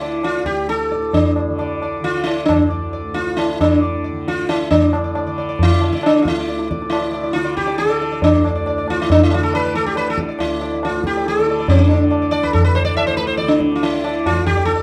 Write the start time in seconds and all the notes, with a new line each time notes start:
Already playing: D2 A2 D3 E4
0.02 D5, tabla na
0.23 F4, tabla na
0.43 D2 G4, tabla ke
0.69 A4, tabla te
0.91 A2 D5, tabla te
1.13 D4, tabla tin, tabla ge
1.36 tabla na
1.48 D3
1.59 D5, tabla na
1.82 D5, tabla na
1.99 D3
2.04 F4, tabla te
2.24 E4, tabla na
2.46 D4, tabla na, tabla ge
2.52 D2
2.70 D5
2.93 D5
3.05 A2
3.14 F4, tabla te
3.37 E4, tabla na
3.58 D3 D4, tabla na, tabla ge
3.83 D5
4.04 D5
4.11 D3
4.28 F4, tabla te
4.49 E4, tabla na
4.71 A2 D4 D5, tabla tin, tabla ge
4.93 tabla na
5.04 D5
5.15 D5, tabla na
5.24 D3 D5
5.38 D5, tabla na
5.49 D5
5.59 E4, tabla tin, tabla ge
5.73 D3 D5
5.81 D5, tabla na
5.93 D5, tabla ke
6.03 D4, tabla na
6.22 F4, tabla ke
6.28 D2 E4
6.38 D5, tabla te
6.48 D5, tabla te
6.59 tabla te
6.71 D5, tabla ke
6.81 A2, tabla te
6.90 E4, tabla na
7.01 D5
7.11 D5, tabla na
7.23 D5
7.31 D3 F4
7.36 tabla te
7.44 D5, tabla te
7.57 G4, tabla ke
7.67 D5, tabla te
7.78 D3 A4, tabla te
7.89 D5
8.01 D5, tabla te
8.12 D5
8.22 D4, tabla tin, tabla ge
8.33 D2
8.44 D5, tabla na
8.56 D5
8.66 D5, tabla na
8.78 D5
8.85 A2, tabla na
8.90 F4
9.02 E4
9.10 D4, tabla tin, tabla ge
9.23 E4
9.31 F4, tabla na
9.36 D3
9.43 A4
9.54 B4, tabla na
9.65 D5
9.74 A4, tabla te
9.86 D3 G4
9.96 B4, tabla na
10.10 A4
10.18 D5, tabla ke
10.29 D5
10.38 D2 E4, tabla na
10.61 D5, tabla na
10.73 D5
10.83 F4, tabla na
10.90 A2
11.04 G4, tabla ke
11.16 D5
11.26 A4, tabla te
11.39 D3 D5
11.46 D5, tabla te
11.59 D5
11.68 C4, tabla tin, tabla ge
11.79 D5
11.89 D3 D4 D5, tabla na
12.11 D5, tabla na
12.22 D5
12.31 D5, tabla na
12.42 D2 B4
12.53 A4, tabla tin, tabla ge
12.64 B4
12.75 C5, tabla na
12.85 D5
12.91 A2
12.97 E5, tabla na
13.07 C5
13.17 B4, tabla te
13.27 C5
13.37 D3 D5, tabla te
13.48 D4, tabla te
13.60 D5, tabla ke
13.72 F4, tabla te
13.83 E4, tabla na
13.91 D3 D5
14.04 D5, tabla na
14.26 F4, tabla na, tabla ge
14.36 D5
14.41 D2
14.46 G4, tabla ge
14.56 D5
14.65 A4, tabla te
14.76 D5